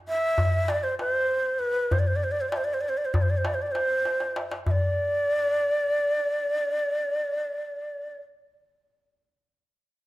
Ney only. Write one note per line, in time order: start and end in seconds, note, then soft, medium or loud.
0.09 0.71 E5 loud
0.69 0.85 D5 medium
0.83 0.99 C5 medium
0.99 1.61 C5 medium
1.59 1.94 B4 medium
1.92 2.01 C5 medium
1.99 2.09 D5 medium
2.07 2.17 C5 medium
2.16 2.25 D5 medium
2.24 2.33 C5 medium
2.31 2.42 D5 medium
2.41 2.51 C5 medium
2.49 2.58 D5 medium
2.57 2.66 C5 medium
2.64 2.75 D5 medium
2.74 2.82 C5 medium
2.81 2.91 D5 medium
2.89 2.99 C5 medium
2.97 3.07 D5 medium
3.05 3.15 C5 medium
3.14 3.23 D5 medium
3.22 3.32 C5 medium
3.30 3.39 D5 medium
3.37 3.48 C5 medium
3.46 3.56 D5 medium
3.54 3.63 C5 medium
3.62 3.67 D5 medium
3.67 3.73 D5 medium
3.72 4.35 C5 medium
4.67 4.72 E5 medium
4.71 8.18 D5 medium